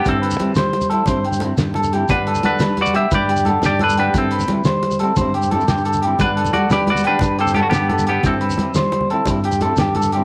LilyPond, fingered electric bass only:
\new Staff \with { instrumentName = "Fingered electric bass" } { \clef bass \time 12/8 \key g \major \tempo 4. = 117 g,4 g8 g4. g,4. g,4. | g,4 g8 g4. g,4. g,4. | g,4 g8 g4. g,4. g,4. | g,4 g8 g4. g,4. g,4. |
g,4 g8 g4. g,4. g,4. | }